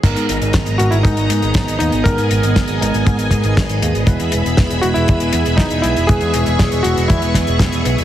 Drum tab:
CC |x---------------|----------------|----------------|----------------|
HH |xxxxxxxxxxxxxxxx|xxxxxxxxxxxxxxxx|xxxxxxxxxxxxxxxx|xxxxxxxxxxxxxxxx|
SD |----o-------o---|----o-------o---|----o-------o---|----o-----o-o---|
BD |o---o---o---o---|o---o---o-o-o---|o---o---o---o---|o---o---o-o-o---|